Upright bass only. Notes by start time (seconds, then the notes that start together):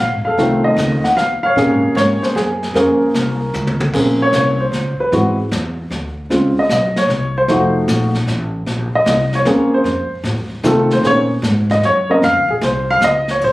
Already playing: A#1
0.11 G#1
0.24 F1
0.38 C2
0.77 C#2
1.03 muted upright bass stroke
1.17 D#2
1.43 muted upright bass stroke
1.56 A#2
1.69 G#2
1.82 F2
1.95 G#2
2.22 muted upright bass stroke
2.35 F#2
2.74 F2
3.01 muted upright bass stroke
3.14 C2
3.54 C#2
3.93 A#1
4.33 C2
4.72 C#2
4.99 muted upright bass stroke
5.12 G#2
5.51 E2
5.90 D2
6.30 C#2
6.56 muted upright bass stroke
6.69 B1
7.08 C2
7.48 F1
7.88 A#1
8.27 A1
8.66 A#1
8.93 muted upright bass stroke
9.06 C2
9.45 D#2
9.84 F2
10.11 muted upright bass stroke
10.24 A2
10.36 F2
10.50 D#2
10.63 C3
11.03 A#2
11.42 G#2
11.81 F#2
12.22 F2
12.35 C#2
12.48 A#1
12.61 C2
13.01 C#2
13.41 A#1